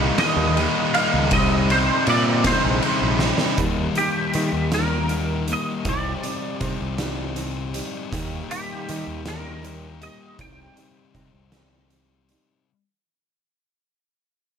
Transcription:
Already playing: distorted electric guitar D#3 G3 A#3 D#4, tonewheel organ D#4 G4 A#4 G5
0.18 distorted electric guitar G3 A#3 D#4, clean electric guitar D#5, snare, ride
0.23 distorted electric guitar D#3
0.37 picked electric bass D#2
0.57 distorted electric guitar D#3 G3, ride
0.61 distorted electric guitar A#3 D#4
0.93 distorted electric guitar D#4, clean electric guitar F5, ride
0.97 distorted electric guitar G3 A#3 D#4
1.14 picked electric bass C#2
1.31 picked electric bass C2, distorted electric guitar C3 G3, tonewheel organ D#4 C5 G5, clean electric guitar D#5, kick, ride
1.35 distorted electric guitar C4 D#4
1.70 distorted electric guitar G3 C4 D#4, clean electric guitar C5, ride
2.06 picked electric bass A#2, distorted electric guitar C3 G3 C4 D#4, clean electric guitar D5, ride
2.44 distorted electric guitar G3 C4 D#4, clean electric guitar C5, kick, snare, ride
2.49 distorted electric guitar C3
2.65 picked electric bass A#1
2.82 distorted electric guitar C3, ride
2.87 distorted electric guitar G3 C4 D#4
3.02 picked electric bass A#1
3.19 distorted electric guitar D#4, snare
3.25 distorted electric guitar G3 C4
3.38 snare
3.58 picked electric bass D#2, distorted electric guitar D#3, steel-string acoustic guitar G3 A#3, kick, closed hi-hat
3.63 distorted electric guitar G3 A#3 D#4
3.95 distorted electric guitar D#4, clean electric guitar G4, closed hi-hat
4.00 distorted electric guitar G3 A#3
4.34 picked electric bass D#3, distorted electric guitar D#3 G3 A#3, closed hi-hat
4.38 distorted electric guitar D#4
4.53 picked electric bass D#2
4.72 distorted electric guitar G3 A#3 D#4, clean electric guitar A#4, snare, closed hi-hat
4.77 distorted electric guitar D#3
5.08 steel-string acoustic guitar D#3 G3 A#3 D#4, closed hi-hat
5.48 distorted electric guitar A#3 D#4, closed hi-hat
5.52 distorted electric guitar G3, clean electric guitar D#5
5.85 picked electric bass C2, distorted electric guitar C3 G3 C4 D#4, steel-string acoustic guitar G4 D5, clean electric guitar D5, kick, closed hi-hat
6.23 distorted electric guitar C4 D#4, steel-string acoustic guitar G4 D5, closed hi-hat
6.28 distorted electric guitar G3
6.61 picked electric bass C3, distorted electric guitar C3 G3 C4 D#4, steel-string acoustic guitar G4 D5, kick, closed hi-hat
6.81 picked electric bass C2
6.98 distorted electric guitar G3 C4 D#4, steel-string acoustic guitar G4 D5, snare, closed hi-hat
7.03 distorted electric guitar C3
7.35 steel-string acoustic guitar C4 D#4 G4 D5, closed hi-hat
7.73 distorted electric guitar G3 C4 D#4, steel-string acoustic guitar G4 D5, closed hi-hat
8.13 picked electric bass D#2, distorted electric guitar D#3 G3 A#3 D#4, steel-string acoustic guitar G4, kick, closed hi-hat
8.49 distorted electric guitar G3 A#3 D#4, steel-string acoustic guitar G4, clean electric guitar G4, closed hi-hat
8.88 distorted electric guitar D#3 G3 A#3 D#4, picked electric bass D#3, steel-string acoustic guitar G4, closed hi-hat
9.07 picked electric bass D#2
9.25 distorted electric guitar D#3 G3 A#3 D#4, steel-string acoustic guitar G4, clean electric guitar A#4, snare, closed hi-hat
9.62 steel-string acoustic guitar G3 A#3 D#4 G4, closed hi-hat
10.01 distorted electric guitar G3 A#3 D#4, steel-string acoustic guitar G4, clean electric guitar D#5, closed hi-hat
10.39 picked electric bass C2, distorted electric guitar C3 G3 C4 D#4, steel-string acoustic guitar G4 D5, clean electric guitar G5, kick, closed hi-hat
10.76 distorted electric guitar C4 D#4, steel-string acoustic guitar G4 D5, closed hi-hat
10.80 distorted electric guitar G3
11.14 picked electric bass C3, distorted electric guitar C3 G3, steel-string acoustic guitar C4 G4 D5, kick, closed hi-hat
11.18 distorted electric guitar C4 D#4
11.34 picked electric bass C2
11.52 distorted electric guitar C4 D#4, steel-string acoustic guitar G4 D5, snare, closed hi-hat
11.57 distorted electric guitar C3 G3
11.90 steel-string acoustic guitar C4 D#4 G4 D5, closed hi-hat
12.29 distorted electric guitar C4 D#4, steel-string acoustic guitar G4 D5, closed hi-hat
12.34 distorted electric guitar G3

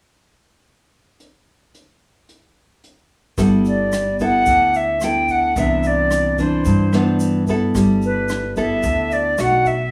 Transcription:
1.20 closed hi-hat
1.75 closed hi-hat
2.29 closed hi-hat
2.84 closed hi-hat
3.38 upright bass G1, nylon-string guitar G3 B3 E4 A4, kick, cross-stick, closed hi-hat, shaker
3.65 flute D5, closed hi-hat, shaker
3.92 cross-stick, closed hi-hat, shaker
4.19 nylon-string guitar B3 E4 A4, flute F#5, kick, closed hi-hat, shaker
4.46 upright bass D2, nylon-string guitar D3, kick, closed hi-hat, shaker
4.74 flute E5, closed hi-hat, shaker
5.01 nylon-string guitar B3 E4 A4, flute G5, cross-stick, closed hi-hat, shaker
5.28 flute F#5, kick, closed hi-hat, shaker
5.56 upright bass C2, nylon-string guitar C3 E3 B3 D4, flute E5, kick, closed hi-hat, shaker
5.83 flute D5, closed hi-hat, shaker
6.11 cross-stick, closed hi-hat, shaker
6.38 nylon-string guitar E3 D4, flute C5, kick, closed hi-hat, shaker
6.65 upright bass G2, nylon-string guitar G2, kick, closed hi-hat, shaker
6.93 nylon-string guitar E3 B3 D4, cross-stick, shaker
7.20 closed hi-hat, shaker
7.47 nylon-string guitar B3 E4 A4, kick, closed hi-hat, shaker
7.75 upright bass G1, nylon-string guitar G3, kick, cross-stick, closed hi-hat, shaker
8.02 flute B4, closed hi-hat, shaker
8.29 cross-stick, closed hi-hat, shaker
8.57 nylon-string guitar B3 E4 A4, flute E5, kick, closed hi-hat, shaker
8.83 upright bass D2, nylon-string guitar D3, kick, closed hi-hat, shaker
9.11 flute D5, closed hi-hat, shaker
9.38 upright bass B1, nylon-string guitar A3 D#4 F#4, flute F#5, cross-stick, closed hi-hat, shaker
9.65 flute E5, kick, closed hi-hat, shaker

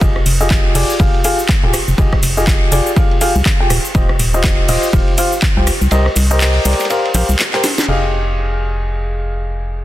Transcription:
0.01 fm bass F1, upright piano F4 G4 G#4 D#5, kick, ride, shaker
0.16 cross-stick
0.26 fm bass F1, open hi-hat, ride, shaker
0.40 upright piano F4 G4 G#4 D#5, shaker
0.50 kick, snare, clap, ride, shaker
0.75 fm bass F1, upright piano F4 G4 G#4 D5, open hi-hat, shaker
0.90 shaker
0.99 fm bass F1, upright piano F4 G4 G#4 F5, kick, ride, shaker
1.14 ride
1.24 upright piano F4 G4 G#4 F5, open hi-hat, ride, shaker
1.39 shaker
1.49 kick, snare, clap, ride, shaker
1.63 fm bass D#1, upright piano F4 G4 G#4 G5
1.74 cross-stick, open hi-hat, ride, shaker
1.88 fm bass F1, shaker
1.98 fm bass F1, upright piano F4 G4 G#4 D#5, kick, ride, shaker
2.12 kick, cross-stick, snare
2.23 fm bass F1, open hi-hat, ride, shaker
2.37 upright piano F4 G4 G#4 D#5, shaker
2.47 kick, snare, clap, ride, shaker
2.72 fm bass F1, upright piano F4 G4 G#4 D5, open hi-hat, ride, shaker
2.86 shaker
2.96 upright piano F4 G4 G#4 F5, kick, ride, shaker
3.11 ride
3.21 upright piano F4 G4 G#4 F5, open hi-hat, ride, shaker
3.36 fm bass C2, shaker
3.46 kick, snare, clap, ride, shaker
3.60 upright piano F4 G4 G#4 G5
3.70 fm bass D#1, cross-stick, open hi-hat, ride, shaker
3.85 shaker
3.95 fm bass D#1, upright piano F4 G4 C5 D#5, kick, ride, shaker
4.09 cross-stick
4.19 fm bass D#1, open hi-hat, ride, shaker
4.34 upright piano F4 G4 C5 D#5, shaker
4.44 kick, snare, clap, ride, shaker
4.69 fm bass D#1, upright piano F4 G4 C5 D#5, open hi-hat, shaker
4.83 shaker
4.93 fm bass D#1, upright piano F4 G4 C5 F5, kick, ride, shaker
5.08 ride
5.18 upright piano F4 G4 C5 F5, open hi-hat, ride, shaker
5.32 shaker
5.42 kick, snare, clap, ride, shaker
5.57 fm bass C2, upright piano F4 G4 C5 G5
5.67 cross-stick, open hi-hat, ride, shaker
5.81 fm bass C2, shaker
5.91 fm bass C2, upright piano G4 A#4 C5 D#5, ride, shaker
6.06 cross-stick, snare
6.16 fm bass C2, snare, open hi-hat, ride, shaker
6.31 upright piano G4 A#4 C5 D#5, shaker
6.41 clap, open hi-hat, shaker
6.65 fm bass C2, upright piano G4 A#4 C5 D5, snare, open hi-hat, ride, shaker
6.72 snare, ride
6.79 snare, ride, shaker
6.85 snare, ride
6.90 upright piano G4 A#4 C5 F5, ride, shaker
7.05 ride
7.14 fm bass A#1, upright piano G4 A#4 C5 F5, snare, open hi-hat, ride, shaker
7.29 fm bass C2, shaker
7.39 snare, clap, ride, shaker
7.54 upright piano G4 A#4 C5 G5, snare, clap, ride
7.63 snare, open hi-hat, ride, shaker
7.78 snare, shaker
7.88 fm bass F1, upright piano G4 G#4 D#5 F5

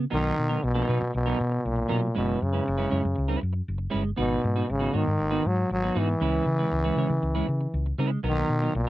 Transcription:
0.10 fingered electric bass B1, trombone D#3, clean electric guitar F#3 B3 D#4 A#4
0.37 fingered electric bass B2, muted clean electric guitar stroke
0.49 clean electric guitar F#3 B3 D#4 A#4
0.62 fingered electric bass B1, trombone B2, muted clean electric guitar stroke
0.74 clean electric guitar F#3 B3 D#4 A#4
0.87 fingered electric bass B2, clean electric guitar F#3 B3 D#4 B4
1.00 fingered electric bass B2, muted clean electric guitar stroke
1.13 fingered electric bass B1, trombone B2, muted clean electric guitar stroke
1.26 clean electric guitar F#3 B3 D#4 A#4
1.39 fingered electric bass B2, muted clean electric guitar stroke
1.51 muted clean electric guitar stroke
1.65 fingered electric bass B1, trombone A#2
1.76 muted clean electric guitar stroke
1.88 fingered electric bass B2, clean electric guitar F#3 B3 D#4 A#4
2.02 muted clean electric guitar stroke
2.15 fingered electric bass F#1, trombone B2, clean electric guitar G#3 C#4 E4 B4
2.40 fingered electric bass F#2, trombone C#3, muted clean electric guitar stroke
2.53 clean electric guitar G#3 C#4 E4 B4
2.65 fingered electric bass F#1, muted clean electric guitar stroke
2.78 clean electric guitar G#3 C#4 E4 B4
2.90 fingered electric bass F#2, clean electric guitar G#3 C#4 E4 C#5
3.03 fingered electric bass F#2, muted clean electric guitar stroke
3.15 fingered electric bass C#2, muted clean electric guitar stroke
3.28 clean electric guitar G#3 C#4 E4 B4
3.40 fingered electric bass F#2, muted clean electric guitar stroke
3.53 muted clean electric guitar stroke
3.68 fingered electric bass F#1
3.78 muted clean electric guitar stroke
3.90 fingered electric bass G1, clean electric guitar G#3 C#4 E4 B4
4.04 muted clean electric guitar stroke
4.16 fingered electric bass G#1, trombone B2, clean electric guitar B3 D#4 F#4 B4
4.42 fingered electric bass G#2, muted clean electric guitar stroke
4.56 clean electric guitar B3 D#4 F#4 B4
4.67 fingered electric bass G#1, trombone C#3, muted clean electric guitar stroke
4.79 clean electric guitar B3 D#4 F#4 B4
4.93 fingered electric bass G#2, trombone D#3, clean electric guitar B3 D#4 F#4 C#5
5.05 fingered electric bass G#2, muted clean electric guitar stroke
5.18 fingered electric bass G#1, muted clean electric guitar stroke
5.31 clean electric guitar B3 D#4 F#4 B4
5.44 fingered electric bass G#2, trombone F#3, muted clean electric guitar stroke
5.56 muted clean electric guitar stroke
5.69 fingered electric bass G#1, trombone F#3, muted clean electric guitar stroke
5.83 clean electric guitar B3 D#4 F#4 B4
5.95 fingered electric bass G#2, clean electric guitar B3 D#4 F#4 B4
5.99 trombone E3
6.09 muted clean electric guitar stroke
6.20 fingered electric bass C#2, clean electric guitar G#3 C#4 E4 B4
6.46 fingered electric bass C#3
6.59 clean electric guitar G#3 C#4 E4 B4
6.71 fingered electric bass C#2, muted clean electric guitar stroke
6.84 clean electric guitar G#3 C#4 E4 B4
6.97 fingered electric bass C#3, clean electric guitar G#3 C#4 E4 C#5
7.09 fingered electric bass C#3, muted clean electric guitar stroke
7.22 fingered electric bass C#2, muted clean electric guitar stroke
7.35 clean electric guitar G#3 C#4 E4 B4
7.47 fingered electric bass C#3, muted clean electric guitar stroke
7.61 muted clean electric guitar stroke
7.74 fingered electric bass C#2
7.86 muted clean electric guitar stroke
7.98 fingered electric bass C#3, clean electric guitar G#3 C#4 E4 B4
8.11 muted clean electric guitar stroke
8.23 fingered electric bass B1, trombone D#3, clean electric guitar F#3 B3 D#4 A#4
8.49 fingered electric bass B2, muted clean electric guitar stroke
8.62 clean electric guitar F#3 B3 D#4 A#4
8.74 fingered electric bass B1, trombone B2, muted clean electric guitar stroke

